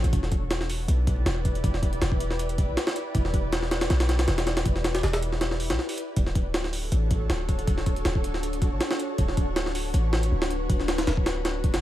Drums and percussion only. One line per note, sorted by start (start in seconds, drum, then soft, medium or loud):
0.04 closed hi-hat medium
0.13 kick loud
0.13 closed hi-hat medium
0.23 snare soft
0.32 kick medium
0.32 closed hi-hat medium
0.51 snare loud
0.51 closed hi-hat medium
0.61 snare medium
0.69 open hi-hat medium
0.88 closed hi-hat medium
1.07 kick loud
1.07 closed hi-hat medium
1.26 snare loud
1.26 closed hi-hat medium
1.45 kick medium
1.45 closed hi-hat medium
1.55 closed hi-hat soft
1.64 kick loud
1.64 closed hi-hat medium
1.74 snare soft
1.83 kick loud
1.83 closed hi-hat medium
1.93 closed hi-hat soft
2.02 snare loud
2.02 closed hi-hat medium
2.12 kick medium
2.20 closed hi-hat medium
2.30 snare soft
2.39 closed hi-hat medium
2.49 closed hi-hat soft
2.58 kick loud
2.58 closed hi-hat medium
2.77 snare loud
2.77 closed hi-hat medium
2.87 snare loud
2.96 closed hi-hat medium
3.15 kick loud
3.15 closed hi-hat medium
3.25 snare soft
3.34 kick loud
3.34 closed hi-hat medium
3.53 snare loud
3.53 closed hi-hat medium
3.62 snare medium
3.71 snare loud
3.71 closed hi-hat medium
3.81 snare loud
3.81 closed hi-hat medium
3.90 snare loud
3.90 closed hi-hat medium
4.00 snare loud
4.00 closed hi-hat medium
4.09 snare loud
4.09 closed hi-hat medium
4.19 snare loud
4.19 closed hi-hat medium
4.28 snare loud
4.28 closed hi-hat medium
4.38 snare loud
4.38 closed hi-hat medium
4.47 snare loud
4.47 closed hi-hat medium
4.57 snare loud
4.57 closed hi-hat medium
4.66 kick loud
4.66 closed hi-hat medium
4.76 snare soft
4.84 snare loud
4.84 closed hi-hat medium
4.95 snare loud
4.95 closed hi-hat medium
5.03 snare loud
5.03 closed hi-hat medium
5.13 snare loud
5.13 closed hi-hat medium
5.23 closed hi-hat medium
5.32 snare soft
5.41 snare loud
5.41 closed hi-hat medium
5.51 snare soft
5.60 open hi-hat medium
5.70 snare loud
5.70 closed hi-hat medium
5.79 snare soft
5.89 open hi-hat medium
5.98 closed hi-hat medium
6.16 kick loud
6.16 closed hi-hat medium
6.26 snare soft
6.35 kick medium
6.35 closed hi-hat medium
6.54 snare loud
6.54 closed hi-hat medium
6.64 snare medium
6.73 open hi-hat medium
6.92 closed hi-hat medium
7.11 kick loud
7.11 closed hi-hat medium
7.30 snare loud
7.30 closed hi-hat medium
7.49 kick medium
7.49 closed hi-hat medium
7.59 closed hi-hat soft
7.67 kick loud
7.67 closed hi-hat medium
7.78 snare soft
7.86 kick medium
7.86 closed hi-hat medium
7.96 closed hi-hat soft
8.05 snare loud
8.05 closed hi-hat medium
8.15 kick loud
8.24 closed hi-hat medium
8.34 snare soft
8.43 closed hi-hat medium
8.53 closed hi-hat soft
8.62 kick loud
8.62 closed hi-hat medium
8.81 snare loud
8.81 closed hi-hat medium
8.91 snare loud
9.00 closed hi-hat medium
9.18 kick loud
9.18 closed hi-hat medium
9.28 snare soft
9.37 kick medium
9.37 closed hi-hat medium
9.56 snare loud
9.56 closed hi-hat medium
9.66 snare medium
9.75 open hi-hat medium
9.94 closed hi-hat medium
10.13 snare loud
10.23 closed hi-hat medium
10.42 snare loud
10.51 closed hi-hat medium
10.70 kick loud
10.70 closed hi-hat medium
10.80 snare soft
10.88 snare loud
10.88 closed hi-hat medium
10.98 snare loud
10.98 closed hi-hat medium
11.07 snare loud
11.07 closed hi-hat medium
11.17 kick loud
11.26 snare loud
11.26 closed hi-hat medium
11.45 snare loud
11.45 closed hi-hat medium
11.64 kick medium
11.64 closed hi-hat medium
11.74 snare loud
11.74 closed hi-hat medium